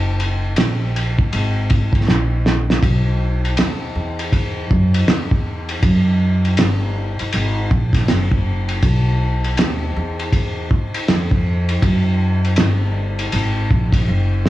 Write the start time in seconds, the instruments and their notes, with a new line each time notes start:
Already playing: upright bass F#1
0.20 ride
0.56 upright bass A#1, snare, hi-hat pedal, ride
0.96 ride
1.19 muted upright bass stroke, kick
1.33 upright bass G#1, ride
1.70 kick, ride
1.93 kick, ride
2.08 upright bass A#1, snare
2.46 snare
2.70 snare
2.83 upright bass B1, kick, ride
3.45 ride
3.57 upright bass D#2, snare, hi-hat pedal, ride
3.95 upright bass E2
4.19 ride
4.33 kick, ride
4.71 upright bass F#2, kick
4.94 ride
5.08 upright bass E2, snare, hi-hat pedal, ride
5.31 kick
5.69 ride
5.83 upright bass F#2, kick, ride
6.45 ride
6.57 upright bass G1, snare, hi-hat pedal, ride
7.19 muted upright bass stroke, ride
7.33 upright bass G#1, ride
7.71 upright bass A#1, kick
7.93 kick, snare, ride
8.08 upright bass F#1, snare, hi-hat pedal, ride
8.32 kick
8.69 ride
8.83 upright bass B1, kick, ride
9.44 ride
9.57 upright bass D#2, snare, hi-hat pedal, ride
9.96 upright bass E2
10.19 ride
10.33 kick, ride
10.71 kick
10.94 ride
11.08 upright bass F2, snare, hi-hat pedal, ride
11.31 kick
11.69 ride
11.82 upright bass F#2, kick, ride
12.44 ride
12.56 upright bass G1, snare, hi-hat pedal, ride
13.19 ride
13.32 upright bass G#1, ride
13.71 upright bass A#1, kick
13.93 kick, ride
14.08 upright bass F#1
14.46 snare